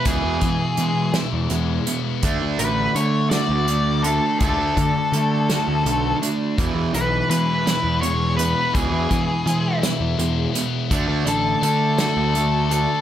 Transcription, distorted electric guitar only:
X:1
M:6/8
L:1/8
Q:3/8=55
K:Emix
V:1 name="Distorted electric guitar" clef=bass
[E,,B,,E,] [E,,B,,] [E,,B,,] [E,,B,,] [E,,B,,] [E,,B,,] | [D,A,D] [D,A,] [D,A,] [D,A,] [D,A,] [D,A,] | [D,A,D] [D,A,] [D,A,] [D,A,] [D,A,] [D,A,] | [E,,B,,E,] [E,,B,,] [E,,B,,] [E,,B,,] [E,,B,,] [E,,B,,] |
[E,,B,,E,] [E,,B,,] [E,,B,,] [E,,B,,] [E,,B,,] [E,,B,,] | [D,A,D] [D,A,] [D,A,] [D,A,] [D,A,] [D,A,] |]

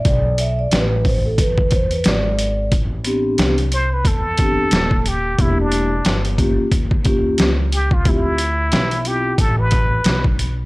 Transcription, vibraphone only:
X:1
M:4/4
L:1/16
Q:"Swing 16ths" 1/4=90
K:Am
V:1 name="Vibraphone"
d2 e d B2 c A B2 c B d4 | z2 [B,CDG]2 z6 [B,CDG]2 z4 | [_B,DEG]2 z4 [B,^CFG]2 z2 [^A,C^EG]2 z4 | [CEFG]2 z4 [CEFG]2 z8 |]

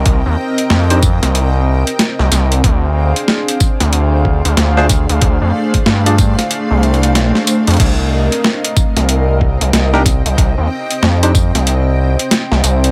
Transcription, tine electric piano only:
X:1
M:4/4
L:1/16
Q:"Swing 16ths" 1/4=93
K:Cm
V:1 name="Tine electric piano"
z4 z [DEGc] z8 z2 | z12 z [DFAc] z2 | z4 z [DFAd] z8 z2 | z12 z [DEGB] z2 |
z4 z [DEGc] z8 z2 |]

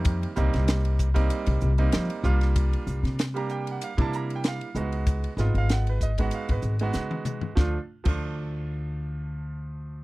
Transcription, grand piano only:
X:1
M:4/4
L:1/16
Q:"Swing 16ths" 1/4=96
K:Dphr
V:1 name="Grand piano"
=e2 z12 z2 | z4 z b g ^f =f a b g f4 | z3 f ^f =B ^d f =f B z6 | z16 |]
V:2 name="Grand piano"
[E,G,B,C]2 [G,B,CE]4 z [G,B,CE]4 [G,B,CE]3 [G,B,DF]2- | [G,B,DF]4 z [G,B,DG]4 [G,B,D=E]4 z [^G,=B,^D^F]2- | [^G,=B,^D^F]2 [G,B,D=F]4 z [G,B,D^F]4 [G,B,DF]4 z | [F,A,DF] z2 [F,A,DF]12- [F,A,DF] |]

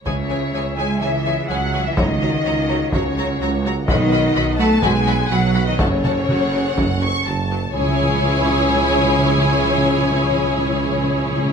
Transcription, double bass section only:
X:1
M:4/4
L:1/8
Q:1/4=125
K:C#m
V:1 name="Double bass section" clef=bass
C,,2 C,,2 C,,2 C,,2 | C,,2 C,,2 C,,2 C,,2 | B,,,2 B,,,2 B,,,2 B,,,2 | F,,,2 F,,,2 F,,,2 F,,,2 |
C,,8- | C,,8 |]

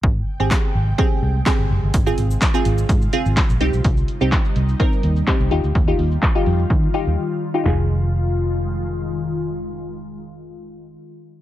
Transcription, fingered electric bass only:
X:1
M:4/4
L:1/16
Q:1/4=126
K:Fm
V:1 name="Fingered electric bass" clef=bass
A,,,2 z A,,, z2 A,,,2 z2 C,,2 z G,,, _G,,, =G,,, | z2 A,,,2 z2 A,,,2 A,,2 z A,,, z B,,, C,, =B,,, | C,,2 z C,, z2 C,,2 z2 E,,2 z C,, E,, =D,, | E,,2 E,,2 z2 F,,2 E,2 z E,, z4 |
F,,,16- | F,,,16 |]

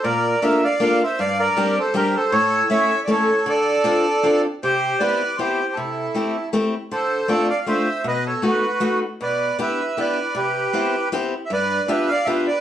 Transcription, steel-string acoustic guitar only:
X:1
M:3/4
L:1/8
Q:"Swing" 1/4=157
K:Dm
V:1 name="Steel-string acoustic guitar"
B,,2 [B,DFA] z [B,DFA] z | G,,2 [G,CDG] z [G,CDG] z | A,,2 [A,^CEA] z [A,CEA] z | D,2 [CDFA] z [CDFA] z |
[K:C] C,2 [B,CEG] z [B,CEG] z | C,2 [A,CEG] z [A,CEG] z | D,2 [A,CDF] z [A,CDF] z | B,,2 [A,B,^D^F] z [A,B,DF] z |
B,,2 [B,DEG] z [B,DEG] z | C,2 [B,CEG] z [B,CEG] z | G,,2 [B,DFG] z [B,DFG] z |]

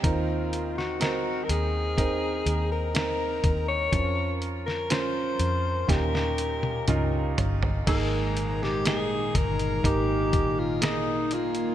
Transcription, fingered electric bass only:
X:1
M:4/4
L:1/8
Q:1/4=61
K:Ebdor
V:1 name="Fingered electric bass" clef=bass
E,,3 E,,2 E,,2 E,, | F,,3 F,, E,,2 D,, =G,,, | [K:Ab] A,,,3 G,,, A,,,4 |]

